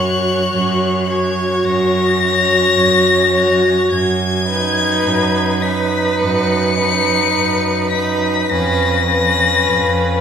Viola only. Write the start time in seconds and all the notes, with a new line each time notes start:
Already playing: F#4
1.08 F#4
2.21 F#4
3.34 F#4
4.47 D#4
5.62 D#4
6.78 D#4
7.93 D#4
8.52 C#4
9.10 C#4